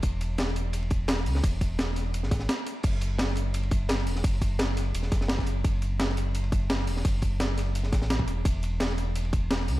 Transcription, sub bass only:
\new Staff \with { instrumentName = "Sub bass" } { \clef bass \time 4/4 \key fis \minor \tempo 4 = 171 e,,2.~ e,,8 cis,8 | e,,2~ e,,16 gis,,8. r4 | fis,,2.~ fis,,8 e,,8 | fis,,2 e,,8 fis,,4. |
fis,,2.~ fis,,8 e,,8 | fis,,2~ fis,,8 a,,4 e,,8 | e,,2.~ e,,8 cis,8 | }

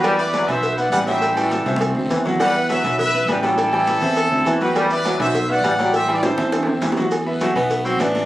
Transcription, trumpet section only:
\new Staff \with { instrumentName = "Trumpet section" } { \time 4/4 \key e \minor \tempo 4 = 204 <g' b'>8 <b' d''>4 <c'' e''>4 <d'' fis''>8 <b' fis''>8 <c'' e''>8~ | <c'' e''>8 <fis' a'>2 r4. | <b' fis''>4 <b' e''>4 <b' e''>4 <g' b'>8 <e' a'>8~ | <e' a'>2.~ <e' a'>8 <g' b'>8~ |
<g' b'>8 <b' d''>4 <c'' e''>4 <d'' fis''>4. | \tuplet 3/2 { <c'' e''>4 <b' d''>8 } <a' c''>4. r4. | r1 | }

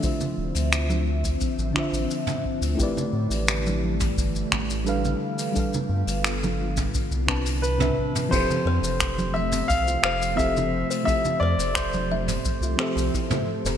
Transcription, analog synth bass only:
\new Staff \with { instrumentName = "Analog synth bass" } { \clef bass \time 4/4 \key f \lydian \tempo 4 = 87 r8 d,,16 d,4~ d,16 r16 a,,16 r16 a,,16 r8. d,16 | a,,16 r16 a,16 a,,4~ a,,16 g,,8 a,,4 r8 | r8 g,16 g,,4~ g,,16 r16 c,4~ c,16 r8 | f,,16 r16 f,16 f,,4~ f,,16 c,8 f,,4~ f,,16 r16 |
r8 f,16 f,,4~ f,,16 r16 c,16 r16 c,16 r8. f,,16 | }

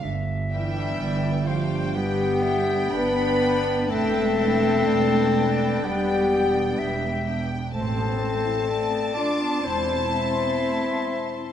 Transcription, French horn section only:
\new Staff \with { instrumentName = "French horn section" } { \time 4/4 \key a \minor \tempo 4 = 62 r8 e'4 f'8 g'4 b'4 | a'2 g'4. r8 | a'4. d''8 c''2 | }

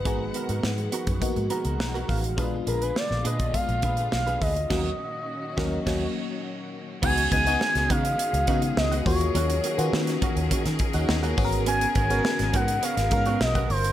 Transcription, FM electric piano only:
\new Staff \with { instrumentName = "FM electric piano" } { \time 4/4 \key ees \minor \tempo 4 = 103 << { r2 r8 bes''8 ges''8 f''8 | r1 | r1 | r1 |
r2 r8. ees'16 <ees' ges'>16 <ges' bes'>8 r16 | r1 | } \\ { <aes ces' ees' aes'>4. r8 <bes ces' ees' ges'>4. r8 | <aes ces' d' f'>4. r8 <aes ces' d' f'>4. r8 | <ges bes des'>8 r4 <ges bes des'>8 <ges bes des'>8 r4. | <aes ces' ees' ges'>8 r16 <aes ces' ees' ges'>4~ <aes ces' ees' ges'>16 r8 <aes ces' ees' ges'>4 <bes des' f' ges'>8~ |
<bes des' f' ges'>8 r16 <bes des' f' ges'>4~ <bes des' f' ges'>16 r4. <ces' des' ges' aes' bes'>8~ | <ces' des' ges' aes' bes'>8 r16 <ces' des' ges' bes'>4~ <ces' des' ges' bes'>16 r8 <ces' des' ges' bes'>4~ <ces' des' ges' bes'>16 r16 | } >> }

